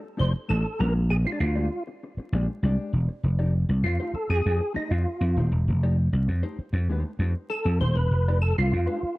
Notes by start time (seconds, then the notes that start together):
0.03 muted clean electric guitar stroke
0.17 F1 A3 D#4 G4 C5 D5
0.34 muted clean electric guitar stroke
0.48 A1 A3 D#4 G4 A4 C5
0.65 muted clean electric guitar stroke
0.79 A#1 G#3 D4 G4 A#4 C5
0.94 muted clean electric guitar stroke
1.09 A#1 G#4, muted clean electric guitar stroke
1.25 G#3 D4 F4 G4 C5
1.32 D4
1.40 D2 F4, muted clean electric guitar stroke
1.55 G#3 D4 G4 D5
1.71 muted clean electric guitar stroke
1.87 muted clean electric guitar stroke
2.03 muted clean electric guitar stroke
2.17 muted slap bass stroke, muted clean electric guitar stroke
2.32 A#1 G#3 D4 G4 D5
2.49 muted clean electric guitar stroke
2.63 C2 G#3 D4 G4 D5
2.93 E1, muted clean electric guitar stroke
3.08 muted clean electric guitar stroke
3.23 F1, muted clean electric guitar stroke
3.39 A3 D#4 G4 D5
3.55 muted clean electric guitar stroke
3.69 C2, muted clean electric guitar stroke
3.83 F2 F4, muted clean electric guitar stroke
4.00 A3 D#4 G4 C5
4.14 A4, muted slap bass stroke, muted clean electric guitar stroke
4.30 F2 G#4, muted clean electric guitar stroke
4.46 F2, muted clean electric guitar stroke
4.61 muted clean electric guitar stroke
4.74 A3 D#4 G4 C5, muted slap bass stroke
4.91 F2 F4, muted clean electric guitar stroke
5.07 muted clean electric guitar stroke
5.21 F2, muted clean electric guitar stroke
5.37 D#1 A3 D#4 G4 C5
5.52 E1, muted clean electric guitar stroke
5.68 F1, muted clean electric guitar stroke
5.83 A3 D#4 G4 D5
5.98 muted clean electric guitar stroke
6.13 C2, muted clean electric guitar stroke
6.28 F2, muted clean electric guitar stroke
6.43 A3 D#4 G4 C5
6.59 muted slap bass stroke, muted clean electric guitar stroke
6.73 F2, muted clean electric guitar stroke
6.88 D#2 A3 D#4 G4 C5
7.05 muted clean electric guitar stroke
7.19 F2 A3 D#4 G4 C5
7.36 muted clean electric guitar stroke
7.50 A4, muted clean electric guitar stroke
7.65 F2, muted clean electric guitar stroke
7.80 D#1 A3 D#4 G4 C5
7.96 E1 B4, muted clean electric guitar stroke
8.11 F1, muted clean electric guitar stroke
8.28 A3 D#4 G4 D5
8.42 A4, muted clean electric guitar stroke
8.58 C2 F4, muted clean electric guitar stroke
8.72 F2, muted clean electric guitar stroke
8.87 A3 D#4 G4 C5
9.03 muted clean electric guitar stroke, muted slap bass stroke